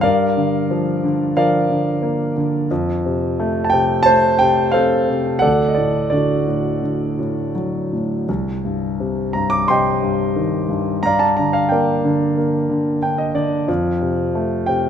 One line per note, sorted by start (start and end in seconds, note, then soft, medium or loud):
0.01 2.66 G2 medium
0.01 1.33 A#4 medium
0.01 1.33 D5 medium
0.01 1.32 F5 medium
0.37 1.03 D3 soft
0.71 1.35 F3 medium
1.04 1.68 D3 medium
1.37 2.67 F3 soft
1.37 2.67 A#4 medium
1.37 2.67 D5 medium
1.37 2.32 F5 medium
1.70 2.35 D3 soft
2.02 2.68 A#3 soft
2.36 2.70 D3 medium
2.71 5.39 F2 medium
3.06 3.72 C3 soft
3.40 4.06 A3 medium
3.64 3.72 A5 medium
3.70 4.40 C3 medium
3.70 4.06 G5 medium
4.03 4.72 C5 medium
4.03 4.40 A5 loud
4.08 5.39 A3 medium
4.39 5.07 C3 medium
4.39 4.75 G5 loud
4.72 5.41 C4 medium
4.72 5.39 A4 medium
4.72 5.39 C5 medium
4.72 5.44 F5 medium
5.09 5.42 C3 soft
5.39 8.25 D2 medium
5.39 6.11 A4 medium
5.39 5.73 D5 medium
5.39 5.70 F#5 loud
5.68 5.76 D#5 medium
5.74 6.45 A2 soft
5.74 6.08 D5 medium
6.10 6.81 D3 soft
6.10 7.53 F#4 soft
6.10 7.52 A4 soft
6.10 7.51 D5 medium
6.47 7.17 A2 soft
6.82 8.24 D3 soft
7.19 7.91 A2 soft
7.55 8.26 F#3 soft
7.93 8.28 A2 soft
8.29 11.00 C2 medium
8.65 9.34 G2 soft
9.00 9.68 C3 soft
9.33 10.01 G2 soft
9.33 9.50 A#5 medium
9.50 9.69 D6 medium
9.68 11.00 C3 soft
9.68 11.01 D#5 medium
9.68 11.01 G5 medium
9.68 11.00 C6 medium
10.03 10.67 G2 medium
10.36 11.02 D#3 soft
10.69 11.02 G2 soft
11.03 13.64 G2 medium
11.03 11.70 D5 medium
11.03 11.52 F5 medium
11.03 11.19 A#5 medium
11.19 11.38 A5 medium
11.37 12.03 D3 soft
11.37 11.55 A#5 medium
11.53 11.70 F5 medium
11.69 12.36 A#3 medium
11.69 12.98 A#4 medium
11.69 12.98 D5 soft
11.69 12.97 G5 medium
12.05 12.68 D3 medium
12.37 13.65 A#3 medium
12.70 13.33 D3 medium
13.02 13.66 D4 medium
13.02 13.18 G5 medium
13.18 13.34 D#5 medium
13.35 13.67 D3 medium
13.35 13.66 D5 medium
13.68 14.89 F2 medium
14.02 14.67 C3 soft
14.35 14.89 A3 soft
14.66 14.89 C3 medium
14.66 14.89 G5 medium